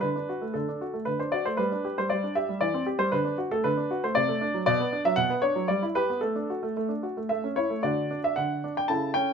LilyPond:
<<
  \new Staff \with { instrumentName = "Grand piano" } { \time 3/4 \key d \mixolydian \tempo 4 = 115 << { b'4 a'4 b'16 c''16 d''16 c''16 | b'8. c''16 d''8 e''8 d''8. c''16 | b'8. a'16 b'8. c''16 d''4 | \key d \major d''8. e''16 fis''8 cis''8 d''8 b'8 |
a'2 e''8 cis''8 | d''8. e''16 fis''8. g''16 a''8 g''8 | } \\ { r2. | r2. | r2. | r2. |
r2. | <d' fis'>2 <e' a'>4 | } >> }
  \new Staff \with { instrumentName = "Grand piano" } { \time 3/4 \key d \mixolydian d16 d'16 fis'16 a16 d16 d'16 fis'16 a16 d16 d'16 fis'16 a16 | g16 d'16 g'16 g16 g16 d'16 g'16 g16 e16 c'16 g'16 g16 | d16 d'16 fis'16 a16 d16 d'16 fis'16 a16 c16 a16 d'16 fis16 | \key d \major b,16 b16 d'16 fis16 b,16 b16 d'16 fis16 g16 e'16 g'16 b16 |
a16 d'16 fis'16 a16 a16 d'16 fis'16 a16 a16 cis'16 e'16 a16 | d8 d'8 d8 d'8 cis8 cis'8 | }
>>